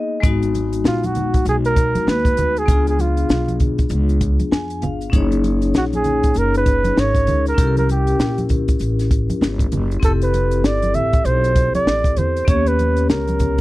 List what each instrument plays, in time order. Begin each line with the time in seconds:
Already playing: vibraphone A#3 B3 D#4 G#4 D#5
0.20 upright bass G#1, vibraphone G#3 B3 D#4, kick, closed hi-hat
0.24 vibraphone F#4, maracas
0.43 closed hi-hat, maracas
0.55 closed hi-hat, high conga, maracas
0.73 closed hi-hat, maracas
0.84 upright bass A#1, flugelhorn F4, snare, maracas
1.03 flugelhorn F#4, closed hi-hat, high conga, maracas
1.15 closed hi-hat, low conga, maracas
1.34 kick, closed hi-hat, maracas
1.45 upright bass B1, flugelhorn G#4, closed hi-hat, maracas
1.65 flugelhorn A#4, closed hi-hat, maracas
1.76 kick, closed hi-hat, maracas
1.95 muted upright bass stroke, closed hi-hat, high conga, maracas
2.07 upright bass D#2, flugelhorn B4, snare, maracas
2.25 kick, closed hi-hat, maracas
2.37 upright bass D2, closed hi-hat, low conga, maracas
2.56 flugelhorn G#4, closed hi-hat, maracas
2.66 upright bass C#2, vibraphone B3 D4 F4, kick, closed hi-hat, maracas
2.71 vibraphone G#4
2.87 flugelhorn G#4, closed hi-hat, maracas
2.99 flugelhorn F4, closed hi-hat, high conga, maracas
3.17 closed hi-hat, maracas
3.29 upright bass B1, snare, maracas
3.48 closed hi-hat, high conga, maracas
3.60 kick, closed hi-hat, low conga, maracas
3.78 kick, closed hi-hat, maracas
3.89 upright bass C#2, closed hi-hat, maracas
4.09 closed hi-hat, maracas
4.21 kick, closed hi-hat, maracas
4.40 closed hi-hat, high conga, maracas
4.52 upright bass F2, vibraphone G#5, snare, maracas
4.70 closed hi-hat, maracas
4.82 upright bass G1, vibraphone F5, closed hi-hat, low conga, maracas
5.01 closed hi-hat, maracas
5.10 upright bass F#1, vibraphone C#4 D#4, kick, closed hi-hat, maracas
5.14 vibraphone G#4 C#5
5.32 closed hi-hat, maracas
5.44 closed hi-hat, high conga, maracas
5.62 closed hi-hat, maracas
5.74 upright bass A#1, flugelhorn F#4, snare, maracas
5.93 flugelhorn G#4, closed hi-hat, high conga, maracas
6.04 closed hi-hat, low conga, maracas
6.23 kick, closed hi-hat, maracas
6.34 upright bass F#1, flugelhorn A#4, closed hi-hat, maracas
6.54 flugelhorn B4, closed hi-hat, maracas
6.66 kick, closed hi-hat, maracas
6.84 closed hi-hat, high conga, maracas
6.96 upright bass G#1, vibraphone C#4 D#4 G#4 A#4, flugelhorn C#5, snare, maracas
7.15 kick, closed hi-hat, maracas
7.27 upright bass C#2, closed hi-hat, low conga, maracas
7.46 flugelhorn A#4, closed hi-hat, maracas
7.55 upright bass C2, vibraphone C#4 E4, kick, closed hi-hat
7.59 vibraphone G4 A4, maracas
7.67 vibraphone A#4
7.77 flugelhorn A#4, closed hi-hat, high conga, maracas
7.89 flugelhorn G4, closed hi-hat, high conga, maracas
8.07 closed hi-hat, maracas
8.19 upright bass A#1, snare, maracas
8.38 closed hi-hat, high conga, maracas
8.49 kick, closed hi-hat, low conga, maracas
8.68 kick, closed hi-hat, maracas
8.79 upright bass A1, closed hi-hat, maracas
8.99 snare, closed hi-hat, maracas
9.11 kick, closed hi-hat, maracas
9.29 muted upright bass stroke, closed hi-hat, high conga, maracas
9.41 upright bass G1, snare, maracas
9.59 kick, closed hi-hat, maracas
9.72 upright bass F#1, closed hi-hat, low conga, maracas
9.91 closed hi-hat, maracas
10.00 upright bass F1, vibraphone C4 E4 G4, kick, closed hi-hat
10.04 flugelhorn A4, vibraphone A4, maracas
10.22 flugelhorn B4, closed hi-hat, maracas
10.34 closed hi-hat, high conga, maracas
10.51 closed hi-hat, maracas
10.64 upright bass G1, flugelhorn D5, snare, maracas
10.82 closed hi-hat, high conga, maracas
10.94 upright bass A1, flugelhorn E5, closed hi-hat, low conga, maracas
11.13 kick, closed hi-hat, maracas
11.25 upright bass B1, flugelhorn C5, closed hi-hat, maracas
11.44 closed hi-hat, maracas
11.56 kick, closed hi-hat, maracas
11.74 flugelhorn D5, muted upright bass stroke, closed hi-hat, high conga, maracas
11.86 upright bass A1, snare, maracas
12.04 kick, closed hi-hat, maracas
12.17 upright bass E2, flugelhorn C5, closed hi-hat, low conga, maracas
12.37 closed hi-hat, maracas
12.45 upright bass D#2, vibraphone B3 C#4, flugelhorn C#5, kick, closed hi-hat
12.49 vibraphone G4 C#5, maracas
12.66 flugelhorn B4, closed hi-hat, maracas
12.79 closed hi-hat, high conga, maracas
12.97 closed hi-hat, maracas
13.09 upright bass C#2, flugelhorn A#4, snare, maracas
13.28 closed hi-hat, high conga, maracas
13.39 kick, closed hi-hat, low conga, maracas